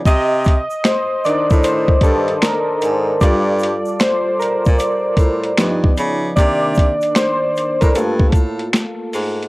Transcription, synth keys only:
0.06 0.87 D#5 loud
0.85 1.25 C5 medium
1.25 2.39 D#3 medium
1.25 2.39 D4 medium
1.25 2.39 A#4 medium
1.25 1.39 D5 loud
1.64 2.04 C5 medium
2.03 2.44 A4 medium
2.42 3.03 A#4 medium
3.21 5.55 G3 medium
3.21 5.55 F4 medium
3.21 5.54 A4 medium
3.21 4.02 D5 loud
4.00 4.14 C5 medium
4.39 4.76 A#4 medium
4.78 5.93 D5 medium
5.58 6.33 F3 medium
5.58 6.33 B3 medium
5.58 6.34 D#4 medium
6.36 6.94 D#3 medium
6.36 6.94 A#3 medium
6.36 6.94 D4 medium
6.36 7.18 D5 loud
7.15 7.82 C5 medium
7.81 7.95 A#4 medium
7.95 8.52 A3 soft
7.95 8.52 A#3 soft
7.95 8.52 F4 medium
7.95 9.09 A4 medium

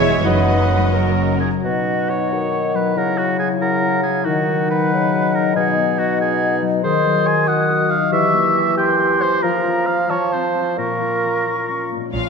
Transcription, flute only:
0.00 0.24 E5 medium
0.25 1.38 F#5 soft
1.63 2.92 F#5 soft
2.96 3.59 F#5 soft
3.61 4.24 F#5 soft
4.25 5.53 F#5 soft
5.56 6.55 F#5 soft
6.84 7.49 C6 soft
7.47 8.10 D#6 soft
8.11 8.76 C#6 medium
8.78 9.44 C6 medium
9.42 10.11 A#5 soft
10.10 10.78 A5 soft
10.79 11.90 C#6 soft

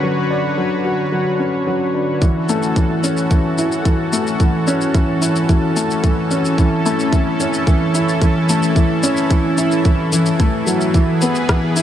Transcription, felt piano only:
0.00 0.03 F#3 medium
0.00 0.19 F#3 medium
0.00 1.39 C#4 medium
0.00 0.30 D4 medium
0.00 0.85 F#4 medium
0.30 0.46 D4 medium
0.58 0.84 F#3 medium
0.85 1.01 F#4 medium
1.12 1.38 F#3 medium
1.39 1.66 C#4 medium
1.67 1.83 F#3 medium
1.94 2.20 D4 medium
2.22 2.48 E3 medium
2.49 2.65 A3 medium
2.76 3.02 E3 medium
3.04 3.19 C#4 medium
3.31 3.57 E3 medium
3.58 3.84 E4 medium
3.85 4.01 E3 medium
4.13 4.39 A3 medium
4.40 4.56 E3 medium
4.67 4.83 C#4 medium
4.94 5.20 E3 medium
5.22 5.37 E4 medium
5.49 5.75 E3 medium
5.76 6.02 A3 medium
6.04 6.19 E3 medium
6.31 6.57 C#4 medium
6.59 6.84 E3 medium
6.86 7.01 A3 medium
7.13 7.39 E3 medium
7.40 7.56 C#4 medium
7.67 7.93 E3 medium
7.95 8.21 E4 medium
8.22 8.37 E3 medium
8.49 8.75 A3 medium
8.77 8.92 E3 medium
9.03 9.19 C#4 medium
9.31 9.57 E3 medium
9.58 9.74 E4 medium
9.86 10.11 E3 medium
10.12 10.28 E3 medium
10.40 10.66 A3 medium
10.67 10.93 F#3 medium
10.94 11.20 E3 medium
11.22 11.38 B3 medium
11.49 11.75 E3 medium
11.77 11.82 E4 medium

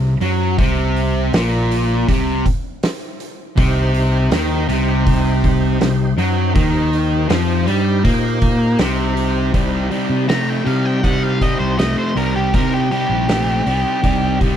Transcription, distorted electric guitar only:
0.00 0.13 C3 medium
0.21 0.57 F#3 loud
0.58 1.32 C3 loud
1.34 2.07 A#2 medium
2.08 2.44 C3 loud
3.57 4.30 C3 loud
4.32 4.68 D#3 loud
4.68 5.79 C3 loud
5.81 6.11 C3 medium
6.17 6.54 F#3 loud
6.54 7.28 D#3 loud
7.29 7.66 F3 medium
7.66 8.03 G3 loud
8.05 8.78 A#3 medium
8.80 9.52 C3 loud
9.53 9.87 C3 medium
9.53 9.88 G3 medium
9.90 10.25 C3 medium
9.90 10.25 G3 medium
10.28 10.62 C3 medium
10.28 10.62 A3 medium
10.65 10.99 C3 medium
10.65 11.00 G3 medium
11.03 11.37 C3 medium
11.03 11.37 G3 medium
11.41 11.75 C3 medium
11.41 11.75 G3 medium
11.78 12.12 C3 medium
11.78 12.12 A3 medium
12.16 12.50 C3 medium
12.16 12.50 G3 medium
12.53 12.87 C3 medium
12.53 12.87 G3 medium
12.91 13.25 C3 medium
12.91 13.25 G3 medium
13.28 13.62 C3 medium
13.28 13.62 A3 medium
13.66 13.99 C3 medium
13.66 14.00 G3 medium
14.03 14.37 C3 medium
14.03 14.37 G3 medium
14.40 14.57 C3 medium
14.40 14.57 G3 medium

